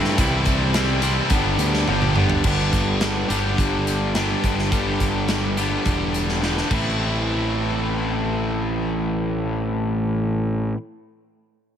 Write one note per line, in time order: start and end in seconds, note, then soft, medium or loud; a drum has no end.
0.00 0.16 G2 medium
0.00 0.17 A2 medium
0.00 0.17 E3 medium
0.00 0.17 A3 medium
0.00 0.17 C4 medium
0.00 0.18 E4 medium
0.04 snare soft
0.18 1.19 C2 loud
0.18 0.73 C3 loud
0.18 0.74 E3 loud
0.18 0.74 G3 loud
0.18 0.75 C4 loud
0.18 0.75 E4 loud
0.18 kick loud
0.18 closed hi-hat loud
0.45 kick medium
0.45 closed hi-hat medium
0.74 1.00 C3 medium
0.74 1.01 E3 medium
0.74 1.02 G3 medium
0.74 1.02 C4 medium
0.74 1.03 E4 medium
0.74 snare loud
0.74 closed hi-hat medium
1.01 1.29 C3 medium
1.01 1.29 E3 medium
1.01 1.29 G3 medium
1.01 1.29 C4 loud
1.01 1.30 E4 medium
1.01 closed hi-hat medium
1.30 1.56 G1 loud
1.30 1.87 G2 medium
1.30 1.87 D3 medium
1.30 1.87 G3 loud
1.30 1.88 B3 loud
1.30 1.89 D4 loud
1.30 1.89 G4 medium
1.30 kick loud
1.30 closed hi-hat medium
1.58 1.84 D2 medium
1.58 closed hi-hat medium
1.74 snare soft
1.88 2.38 G1 medium
1.88 2.14 G2 medium
1.88 2.15 D3 medium
1.88 2.16 G3 medium
1.88 2.16 B3 medium
1.88 2.16 D4 medium
1.88 2.17 G4 loud
1.88 high tom medium
2.02 mid tom medium
2.16 2.42 G2 medium
2.16 2.43 D3 medium
2.16 2.43 G3 medium
2.16 2.43 B3 medium
2.16 2.43 D4 medium
2.16 2.44 G4 medium
2.16 mid tom medium
2.30 floor tom loud
2.44 2.70 G1 loud
2.44 3.32 G2 medium
2.44 3.28 D3 medium
2.44 3.30 G3 medium
2.44 3.30 B3 loud
2.44 3.29 D4 loud
2.44 3.28 G4 loud
2.44 kick loud
2.44 crash medium
2.73 3.23 G1 medium
2.73 kick medium
2.73 closed hi-hat medium
3.01 snare loud
3.01 closed hi-hat medium
3.28 3.55 G1 medium
3.28 4.14 D3 medium
3.28 4.13 G3 medium
3.28 4.13 B3 medium
3.28 4.13 D4 medium
3.28 4.12 G4 medium
3.28 closed hi-hat medium
3.32 4.13 G2 medium
3.58 4.34 G1 medium
3.58 kick loud
3.58 closed hi-hat medium
3.87 closed hi-hat medium
4.14 4.69 G2 medium
4.14 4.70 D3 medium
4.14 4.70 G3 medium
4.14 4.70 B3 medium
4.14 4.71 D4 medium
4.14 4.71 G4 medium
4.14 snare loud
4.14 closed hi-hat medium
4.44 4.69 G1 medium
4.44 kick medium
4.44 closed hi-hat medium
4.59 snare soft
4.71 4.97 G1 medium
4.71 5.54 G2 medium
4.71 5.55 D3 medium
4.71 5.55 G3 medium
4.71 5.56 B3 medium
4.71 5.56 D4 medium
4.71 5.56 G4 medium
4.71 kick loud
4.71 closed hi-hat medium
5.00 5.76 G1 medium
5.00 kick medium
5.00 closed hi-hat medium
5.28 snare loud
5.28 closed hi-hat medium
5.57 6.40 G2 medium
5.57 6.41 D3 medium
5.57 6.41 G3 medium
5.57 6.41 B3 medium
5.57 6.41 D4 medium
5.57 6.40 G4 medium
5.57 closed hi-hat medium
5.85 6.62 E1 loud
5.85 kick medium
5.85 closed hi-hat medium
6.14 closed hi-hat soft
6.29 snare soft
6.41 6.70 G2 medium
6.41 6.69 D3 medium
6.41 6.70 G3 medium
6.41 6.71 B3 medium
6.41 6.72 D4 medium
6.41 6.72 G4 medium
6.41 snare medium
6.57 snare soft
6.69 10.72 A1 medium
6.69 10.76 A2 medium
6.69 10.76 E3 medium
6.69 10.77 A3 medium
6.69 10.77 C4 medium
6.69 10.78 E4 medium
6.69 kick medium
6.69 crash medium